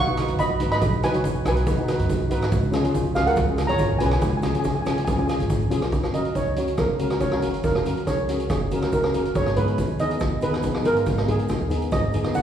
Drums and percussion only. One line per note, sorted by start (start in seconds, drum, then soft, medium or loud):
0.17 cross-stick medium
0.17 closed hi-hat medium
0.17 shaker medium
0.28 closed hi-hat medium
0.28 shaker soft
0.38 kick medium
0.38 closed hi-hat medium
0.38 shaker loud
0.60 closed hi-hat medium
0.60 shaker medium
0.71 cross-stick medium
0.71 closed hi-hat medium
0.71 shaker soft
0.81 kick loud
0.81 closed hi-hat medium
0.81 shaker loud
0.93 shaker soft
1.03 cross-stick medium
1.03 closed hi-hat medium
1.03 shaker medium
1.14 closed hi-hat medium
1.14 shaker soft
1.24 kick medium
1.24 closed hi-hat medium
1.24 shaker loud
1.35 shaker soft
1.45 cross-stick medium
1.45 closed hi-hat medium
1.45 shaker medium
1.57 closed hi-hat medium
1.67 kick loud
1.67 closed hi-hat medium
1.67 shaker loud
1.88 cross-stick medium
1.88 closed hi-hat medium
1.88 shaker medium
1.99 closed hi-hat medium
1.99 shaker soft
2.10 kick medium
2.10 closed hi-hat medium
2.10 shaker medium
2.31 closed hi-hat medium
2.31 shaker medium
2.42 cross-stick medium
2.42 closed hi-hat medium
2.42 shaker soft
2.52 kick loud
2.52 closed hi-hat medium
2.52 shaker medium
2.63 shaker soft
2.73 cross-stick medium
2.73 closed hi-hat medium
2.73 shaker medium
2.84 closed hi-hat medium
2.84 shaker soft
2.95 kick medium
2.95 closed hi-hat medium
2.95 shaker loud
3.06 shaker soft
3.15 cross-stick medium
3.15 closed hi-hat medium
3.15 shaker medium
3.27 closed hi-hat medium
3.27 shaker soft
3.36 kick loud
3.36 closed hi-hat medium
3.36 shaker medium
3.58 cross-stick medium
3.58 closed hi-hat medium
3.58 shaker medium
3.69 closed hi-hat medium
3.78 kick medium
3.78 closed hi-hat medium
3.78 shaker loud
4.00 closed hi-hat medium
4.00 shaker medium
4.11 cross-stick medium
4.11 closed hi-hat medium
4.11 shaker soft
4.21 kick loud
4.21 closed hi-hat medium
4.21 shaker medium
4.42 cross-stick medium
4.42 closed hi-hat medium
4.42 shaker medium
4.54 closed hi-hat medium
4.54 shaker soft
4.64 kick medium
4.64 closed hi-hat medium
4.64 shaker loud
4.86 cross-stick medium
4.86 closed hi-hat medium
4.86 shaker medium
4.97 closed hi-hat medium
4.97 shaker soft
5.07 kick loud
5.07 closed hi-hat medium
5.07 shaker medium
5.18 shaker soft
5.29 cross-stick medium
5.29 closed hi-hat medium
5.29 shaker medium
5.40 closed hi-hat medium
5.40 shaker soft
5.50 kick medium
5.50 closed hi-hat medium
5.50 shaker loud
5.61 shaker soft
5.71 closed hi-hat medium
5.71 shaker medium
5.82 cross-stick medium
5.82 closed hi-hat medium
5.92 kick loud
5.92 closed hi-hat medium
5.92 shaker medium
6.03 cross-stick medium
6.03 shaker soft
6.14 closed hi-hat medium
6.14 shaker medium
6.25 closed hi-hat medium
6.35 kick medium
6.35 closed hi-hat medium
6.35 shaker medium
6.56 closed hi-hat medium
6.56 shaker medium
6.68 closed hi-hat medium
6.77 kick loud
6.77 cross-stick medium
6.77 closed hi-hat medium
6.77 shaker medium
6.99 closed hi-hat medium
6.99 shaker medium
7.10 cross-stick medium
7.10 closed hi-hat medium
7.20 kick medium
7.20 closed hi-hat medium
7.20 shaker medium
7.32 cross-stick medium
7.42 closed hi-hat medium
7.42 shaker medium
7.54 closed hi-hat medium
7.54 shaker soft
7.63 kick loud
7.63 closed hi-hat medium
7.63 shaker medium
7.75 cross-stick medium
7.85 closed hi-hat medium
7.85 shaker medium
7.97 closed hi-hat medium
7.97 shaker soft
8.07 kick medium
8.07 cross-stick medium
8.07 closed hi-hat medium
8.07 shaker medium
8.19 shaker soft
8.29 closed hi-hat medium
8.29 shaker medium
8.39 closed hi-hat medium
8.39 shaker soft
8.49 kick loud
8.49 cross-stick medium
8.49 closed hi-hat medium
8.49 shaker medium
8.71 closed hi-hat medium
8.71 shaker medium
8.82 cross-stick medium
8.82 closed hi-hat medium
8.92 kick medium
8.92 closed hi-hat medium
8.92 shaker medium
9.04 cross-stick medium
9.14 closed hi-hat medium
9.14 shaker medium
9.25 closed hi-hat medium
9.25 shaker soft
9.35 kick loud
9.35 closed hi-hat medium
9.35 shaker medium
9.46 cross-stick medium
9.46 shaker soft
9.56 closed hi-hat medium
9.56 shaker medium
9.68 closed hi-hat medium
9.68 shaker soft
9.78 kick medium
9.78 closed hi-hat medium
9.78 shaker medium
9.89 shaker soft
9.99 closed hi-hat medium
9.99 shaker medium
10.10 closed hi-hat medium
10.10 shaker soft
10.20 kick loud
10.20 cross-stick medium
10.20 closed hi-hat medium
10.20 shaker medium
10.41 closed hi-hat medium
10.41 shaker medium
10.54 cross-stick medium
10.54 closed hi-hat medium
10.62 kick medium
10.62 closed hi-hat medium
10.62 shaker medium
10.74 cross-stick medium
10.85 closed hi-hat medium
10.85 shaker medium
10.96 closed hi-hat medium
10.96 shaker soft
11.06 kick medium
11.06 closed hi-hat medium
11.06 shaker medium
11.17 cross-stick medium
11.17 shaker soft
11.28 closed hi-hat medium
11.38 closed hi-hat medium
11.38 shaker soft
11.48 kick medium
11.48 cross-stick medium
11.48 closed hi-hat medium
11.48 shaker medium
11.60 shaker soft
11.70 closed hi-hat medium
11.70 shaker medium
11.82 closed hi-hat medium
11.82 shaker soft
11.91 kick loud
11.91 cross-stick medium
11.91 closed hi-hat medium
11.91 shaker medium
12.03 shaker soft
12.13 closed hi-hat medium
12.13 shaker medium
12.24 cross-stick medium
12.24 closed hi-hat medium
12.24 shaker soft
12.34 kick medium
12.34 closed hi-hat medium
12.34 shaker medium